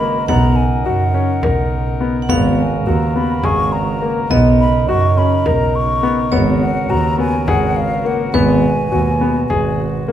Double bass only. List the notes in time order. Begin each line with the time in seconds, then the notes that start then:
Already playing: G#1
0.28 B1
0.85 F#2
1.43 B1
2.29 G#1
2.86 D#2
3.44 G#1
4.30 B1
4.88 F#2
5.46 B1
6.32 G#1
6.89 D#2
7.47 G#1
8.34 G#1
8.92 D#2
9.49 G#1